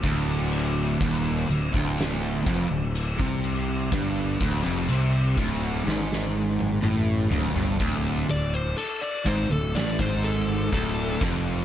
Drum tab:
CC |x-x-x-x-x-x-x-x-|x-x-x-x---------|x-x-x-x-x-x-x-x-|
SD |--------o-------|--------oo------|--------o-------|
T1 |----------------|-----------o----|----------------|
T2 |----------------|------------o---|----------------|
FT |----------------|--------------oo|----------------|
BD |o---o--o--o--o--|o-o---o---------|o-----o--o--o-o-|